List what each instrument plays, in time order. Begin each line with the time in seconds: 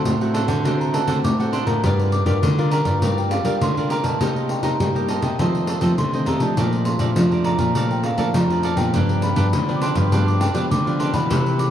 Already playing: nylon-string guitar A3 C4 F#4, celesta C6
0.05 nylon-string guitar A2, pandeiro
0.21 nylon-string guitar A3 C4 F#4, cavaquinho A4 C5 F#5, pandeiro
0.34 cavaquinho D4 A4 C5 F#5, celesta A5, pandeiro
0.48 nylon-string guitar D3, cavaquinho A4 C5 F#5, pandeiro
0.64 nylon-string guitar D3 A3 C4 F#4, cavaquinho D4 A4 C5 F#5, pandeiro
0.80 celesta A#5, pandeiro
0.93 cavaquinho D4 A4 C5 F#5, celesta A5, pandeiro
1.07 nylon-string guitar D3 A3 C4 F#4, cavaquinho D4 A4 C5 F#5, pandeiro
1.24 nylon-string guitar A2, celesta D6, pandeiro
1.40 nylon-string guitar A3 C4 F#4, cavaquinho A4 C5 F#5, pandeiro
1.53 cavaquinho D4 A4 C5 F#5, celesta C6, pandeiro
1.66 nylon-string guitar A2 D4 F4 A#4, cavaquinho A4 C5 F#5, celesta A#5, pandeiro
1.83 nylon-string guitar G2 G3, cavaquinho G4 A#4 D5 F5, pandeiro
1.99 pandeiro
2.12 celesta D6, pandeiro
2.25 nylon-string guitar G2 D4 F4 A#4, cavaquinho G4 A#4 D5 F5, pandeiro
2.42 nylon-string guitar D3, pandeiro
2.58 nylon-string guitar D4 F4 A#4, cavaquinho A#4 D5 F5, pandeiro
2.71 cavaquinho G4 A#4 D5 F5, celesta A#5, pandeiro
2.85 nylon-string guitar G2, cavaquinho A#4 D5 F5, pandeiro
3.02 nylon-string guitar G3 D4 F4 A#4, cavaquinho G4 A#4 D5 F5, pandeiro
3.18 celesta G5, pandeiro
3.31 cavaquinho G4 A#4 D5 F5, celesta F5, pandeiro
3.44 nylon-string guitar G3 D4 F4 A#4, cavaquinho G4 A#4 D5 F5, pandeiro
3.61 nylon-string guitar D3, celesta C6, pandeiro
3.77 nylon-string guitar D4 F4 A#4, cavaquinho A#4 D5 F5, pandeiro
3.90 cavaquinho G4 A#4 D5 F5, celesta A#5, pandeiro
4.03 nylon-string guitar B2, cavaquinho A#4 D5 F5, celesta A5, pandeiro
4.20 nylon-string guitar C3 A#3 D#4 G4, cavaquinho D#4 A#4 C5 D#5, pandeiro
4.36 pandeiro
4.49 celesta G5, pandeiro
4.63 nylon-string guitar C3 A#3 D#4 G4, cavaquinho D#4 A#4 C5 D#5, celesta A#5, pandeiro
4.80 nylon-string guitar G2 G3, pandeiro
4.95 nylon-string guitar A#3 D#4 G4, cavaquinho A#4 C5 D#5, pandeiro
5.08 cavaquinho D#4 A#4 C5 D#5, celesta A5, pandeiro
5.22 nylon-string guitar C3, cavaquinho A#4 C5 D#5, celesta G5, pandeiro
5.39 nylon-string guitar F2 D#3 F3 A3 C4, cavaquinho F4 A4 C5 D#5, celesta A5, pandeiro
5.55 pandeiro
5.67 cavaquinho F4 A4 C5 D#5, pandeiro
5.81 nylon-string guitar D#3 F3 A3 C4, cavaquinho F4 A4 C5 D#5, pandeiro
5.98 nylon-string guitar C3 D3, celesta C6, pandeiro
6.13 nylon-string guitar D#3 A3 C4, cavaquinho A4 C5 D#5, pandeiro
6.26 nylon-string guitar C3, cavaquinho F4 A4 C5 D#5, celesta A#5, pandeiro
6.40 nylon-string guitar F3 A3 D4, cavaquinho A4 C5 D#5, celesta A5, pandeiro
6.57 nylon-string guitar A#2, cavaquinho D5 F5 A#5, pandeiro
6.72 pandeiro
6.85 celesta C6, pandeiro
6.99 nylon-string guitar A#2 F3 A3 D4, cavaquinho A4 D5 F5 A#5, pandeiro
7.16 nylon-string guitar F2 F3, pandeiro
7.31 nylon-string guitar F3 A3 D4, cavaquinho D5 F5 A#5, pandeiro
7.44 cavaquinho A4 D5 F5 A#5, celesta A#5, pandeiro
7.58 nylon-string guitar A#2, cavaquinho D5 F5 A#5, pandeiro
7.75 nylon-string guitar A#2 F3 A3 D4, cavaquinho A4 D5 F5 A#5, pandeiro
7.91 celesta G5, pandeiro
8.04 cavaquinho A4 D5 F5 A#5, celesta F5, pandeiro
8.18 nylon-string guitar F3 A3 A#3 D4, cavaquinho A4 D5 F5 A#5, pandeiro
8.34 nylon-string guitar F2 F3, celesta A#5, pandeiro
8.50 nylon-string guitar F3 A3 D4, cavaquinho D5 F5 A#5, pandeiro
8.63 cavaquinho A4 D5 F5 A#5, celesta A5, pandeiro
8.77 nylon-string guitar A#2 F3 B3 D4, cavaquinho D5 F5 A#5, celesta G5, pandeiro
8.94 nylon-string guitar G2, cavaquinho D4 G4 B4 F5, pandeiro
9.09 pandeiro
9.22 celesta B5, pandeiro
9.36 nylon-string guitar G2 F3 B3 D4, cavaquinho D4 G4 B4 F5, pandeiro
9.53 nylon-string guitar D3, pandeiro
9.68 nylon-string guitar F3 B3 D4, cavaquinho G4 B4 F5, pandeiro
9.76 celesta D6
9.81 cavaquinho D4 G4 B4 F5, celesta C6, pandeiro
9.95 nylon-string guitar G2, cavaquinho G4 B4 F5, pandeiro
10.12 nylon-string guitar G2 F3 B3 D4, cavaquinho D4 G4 B4 F5, pandeiro
10.27 celesta D6, pandeiro
10.40 cavaquinho D4 G4 B4 F5, celesta G5, pandeiro
10.54 nylon-string guitar F3 G3 B3 D4, cavaquinho D4 G4 B4 F5, pandeiro
10.71 nylon-string guitar D3, celesta D6, pandeiro
10.86 nylon-string guitar F3 B3 D4, cavaquinho G4 B4 F5, pandeiro
10.99 cavaquinho D4 G4 B4 F5, celesta C6, pandeiro
11.13 nylon-string guitar B2 E3 D4, cavaquinho G4 B4 F5, celesta B5, pandeiro
11.30 nylon-string guitar C3, cavaquinho E4 B4 C5 E5, pandeiro
11.46 pandeiro
11.59 celesta D6, pandeiro